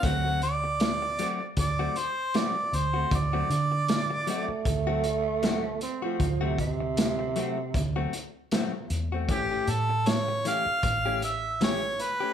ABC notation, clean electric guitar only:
X:1
M:4/4
L:1/16
Q:"Swing 16ths" 1/4=78
K:Dmix
V:1 name="Clean electric guitar"
[F,A,CF] [F,A,CF] z4 [F,A,CF] z2 [F,A,CF] z2 [F,A,CF] z2 [A,CF] | z [F,A,CF] z4 [F,A,CF] z2 [F,A,CF] z2 [F,A,CF] z2 [A,CF] | z [F,A,CF] z4 [F,A,CF] z2 [F,A,CF] z2 [F,A,CF] z2 [A,CF] | [E,A,^CG] [E,A,CG] z4 [E,A,CG] z2 [E,A,CG] z2 [E,A,CG] z2 [A,CG] |]